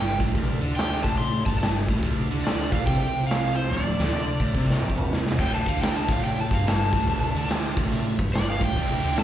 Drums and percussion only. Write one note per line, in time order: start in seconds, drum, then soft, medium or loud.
0.20 kick loud
0.35 kick loud
0.35 open hi-hat medium
0.77 snare loud
0.77 open hi-hat medium
1.04 kick loud
1.19 open hi-hat medium
1.46 kick loud
1.61 snare loud
1.61 open hi-hat medium
1.88 kick medium
2.02 kick loud
2.02 open hi-hat medium
2.45 snare loud
2.45 open hi-hat medium
2.61 snare soft
2.72 kick loud
2.87 kick loud
2.87 open hi-hat medium
3.30 snare loud
3.30 open hi-hat medium
3.71 high tom medium
4.00 snare medium
4.12 mid tom medium
4.40 kick medium
4.55 kick medium
4.70 snare medium
4.82 mid tom medium
4.90 kick medium
4.98 floor tom medium
5.13 snare medium
5.26 snare medium
5.32 floor tom medium
5.39 kick loud
5.39 crash loud
5.66 kick loud
5.66 open hi-hat medium
5.82 snare loud
5.82 open hi-hat medium
6.09 kick loud
6.09 open hi-hat medium
6.24 open hi-hat medium
6.51 kick medium
6.51 open hi-hat medium
6.66 snare loud
6.66 open hi-hat medium
6.93 kick medium
6.93 open hi-hat soft
7.07 kick loud
7.07 open hi-hat medium
7.35 open hi-hat medium
7.49 snare loud
7.49 open hi-hat medium
7.77 kick loud
7.77 open hi-hat medium
7.92 open hi-hat medium
8.19 kick loud
8.19 open hi-hat medium
8.34 snare loud
8.34 open hi-hat medium
8.61 kick loud
8.61 open hi-hat medium
8.76 kick loud
8.76 crash loud
9.03 open hi-hat medium
9.16 snare loud
9.16 open hi-hat medium